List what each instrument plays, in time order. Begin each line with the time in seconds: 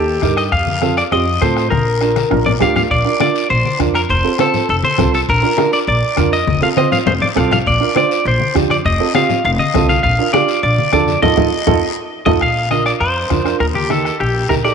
Already playing: upright bass D#2, clean electric guitar G4
0.22 upright bass G2, upright piano D#4 G4 A#4, bombo low, bombo rim, high conga, short guiro
0.37 clean electric guitar D#5, bombo rim, short guiro
0.52 upright bass F2, clean electric guitar F5, bombo low, bombo rim, long guiro
0.67 high conga
0.82 upright piano C4 F4 A4, bombo rim, high conga, short guiro
0.97 clean electric guitar D5, bombo rim, short guiro
1.11 upright bass F2, upright piano C4 F4 G4, clean electric guitar D#5, bombo rim, long guiro
1.41 upright bass A2, upright piano C4 F4 A4, clean electric guitar C5, bombo low, bombo rim, high conga, short guiro
1.57 bombo rim, short guiro
1.70 upright bass A#1, clean electric guitar A#4, bombo low, bombo rim, high conga, long guiro
2.01 upright piano D4 F4 A#4, bombo rim, short guiro
2.16 bombo rim, high conga, short guiro
2.30 upright bass A#1, upright piano D4 F4 A#4, bombo rim, low conga
2.46 clean electric guitar D5, low conga
2.60 upright bass D2, upright piano D4 F4 G4, clean electric guitar F5, bombo low, bombo rim, low conga, short guiro
2.76 clean electric guitar F5, bombo rim, low conga, short guiro
2.91 upright bass A#1, clean electric guitar D5, bombo low, high conga, long guiro
3.05 upright piano D4 F4 A#4
3.20 upright piano D4 F4 A#4, clean electric guitar D5, bombo rim, high conga, short guiro
3.35 short guiro
3.50 upright bass A#1, clean electric guitar C5, high conga, long guiro
3.65 high conga
3.79 upright bass F2, upright piano D4 F4 A#4, bombo low, bombo rim, high conga, short guiro
3.95 clean electric guitar A#4, bombo rim, short guiro
4.09 upright bass F1, clean electric guitar C5, bombo low, high conga, long guiro
4.24 upright piano C4 F4 A4
4.39 upright piano C4 F4 C5, clean electric guitar A4, bombo rim, high conga, short guiro
4.54 low conga, short guiro
4.68 upright bass F1, clean electric guitar A4, high conga, long guiro
4.83 clean electric guitar C5, high conga
4.98 upright bass C2, upright piano C4 F4 A4, bombo low, bombo rim, high conga, low conga, short guiro
5.14 clean electric guitar A4, short guiro
5.28 upright bass A#1, clean electric guitar A#4, bombo low, high conga, long guiro
5.42 upright piano D4 F4 A#4
5.57 upright piano D4 F4 A#4, bombo rim, high conga, short guiro
5.73 clean electric guitar D5, short guiro
5.87 upright bass A#1, clean electric guitar D5, high conga, long guiro
6.16 upright bass F2, upright piano D4 F4 A#4, bombo low, bombo rim, high conga, short guiro
6.33 clean electric guitar D#5, short guiro
6.47 upright bass F1, bombo low, high conga, long guiro
6.61 upright piano C4 F4 A4, clean electric guitar F5, high conga
6.76 upright piano C4 F4 C5, clean electric guitar D#5, bombo rim, high conga, short guiro
6.92 clean electric guitar F5, low conga, short guiro
7.06 upright bass F1, clean electric guitar C5, low conga, long guiro
7.22 clean electric guitar D5, low conga
7.35 upright bass C2, upright piano C4 F4 A4, clean electric guitar F5, bombo low, bombo rim, low conga, short guiro
7.51 clean electric guitar F5, bombo rim, low conga, short guiro
7.66 upright bass A#1, clean electric guitar D5, bombo low, high conga, long guiro
7.80 upright piano D4 F4 A#4
7.95 upright piano D4 F4 C5, clean electric guitar D5, bombo rim, high conga, short guiro
8.11 short guiro
8.25 upright bass A#1, clean electric guitar C5, high conga, long guiro
8.40 high conga
8.55 upright bass F2, upright piano D4 F4 G4, bombo low, bombo rim, high conga, short guiro
8.70 clean electric guitar D5, bombo rim, high conga, short guiro
8.85 upright bass F1, clean electric guitar D#5, bombo low, high conga, long guiro
9.00 upright piano C4 F4 A4
9.14 upright piano C4 F4 G4, clean electric guitar F5, bombo rim, high conga, short guiro
9.29 low conga, short guiro
9.44 upright bass F1, clean electric guitar F5, high conga, long guiro
9.59 clean electric guitar D#5, high conga
9.74 upright bass C2, upright piano C4 F4 A4, bombo low, bombo rim, high conga, low conga, short guiro
9.89 clean electric guitar F5, high conga, short guiro
10.03 upright bass A#1, clean electric guitar F5, bombo low, long guiro
10.19 upright piano D4 F4 A#4
10.33 upright piano D4 F4 G4, clean electric guitar D5, bombo rim, high conga, short guiro
10.48 short guiro
10.63 upright bass A#1, clean electric guitar D5, high conga, long guiro
10.78 high conga
10.92 upright bass F2, upright piano D4 F4 A4, clean electric guitar D5, bombo low, bombo rim, high conga, short guiro
11.08 high conga, short guiro
11.22 upright bass F2, upright piano D#4 F4 A4, clean electric guitar D#5, bombo low, low conga, long guiro
11.37 upright bass F2, upright piano D#4 F4 A4, bombo low, low conga, long guiro
11.67 upright bass F2, upright piano D#4 F4 A4, bombo low, low conga, long guiro
12.26 upright bass F2, upright piano D#4 F4 A4, clean electric guitar D#5, bombo low, low conga, long guiro
12.41 upright bass A#1, clean electric guitar F5, bombo low, bombo rim, long guiro
12.71 upright piano D4 F4 A#4, clean electric guitar D#5, bombo rim, high conga, short guiro
12.86 clean electric guitar D5, bombo rim, short guiro
13.00 upright bass F2, clean electric guitar C5, bombo rim, long guiro
13.30 upright bass F2, upright piano D4 F4 A#4, bombo low, bombo rim, high conga, short guiro
13.44 upright piano D4 F4 A#4, bombo rim, short guiro
13.60 upright bass D#2, clean electric guitar A#4, bombo low, bombo rim, long guiro
13.75 clean electric guitar G4, high conga
13.89 upright piano D#4 G4 A#4, clean electric guitar A4, bombo rim, high conga, short guiro
14.05 bombo rim, short guiro
14.20 upright bass A#1, clean electric guitar G4, bombo rim, long guiro
14.49 upright bass A#1, upright piano D#4 G4 A#4, clean electric guitar A#4, bombo low, bombo rim, high conga, short guiro
14.65 upright piano D#4 G4 A4, clean electric guitar D5, bombo rim, short guiro